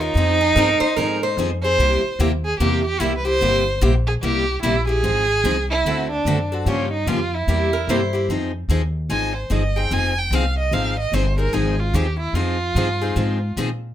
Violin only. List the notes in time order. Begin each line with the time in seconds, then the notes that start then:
0.01 D#4
1.63 C5
2.45 G#4
2.60 G4
2.85 G4
3.01 E4
3.18 B4
3.25 C5
4.07 G#4
4.23 G4
4.63 E4
4.88 G#4
5.70 E4
6.11 D4
6.67 C#4
6.92 D#4
7.08 F4
7.34 E4
9.11 G#5
9.36 C5
9.52 D#5
9.77 G5
9.93 G#5
10.19 G5
10.35 F5
10.59 D#5
10.74 F5
11.00 D#5
11.14 C5
11.39 A#4
11.54 G#4
11.80 F4
11.95 G4
12.19 E4
12.34 F4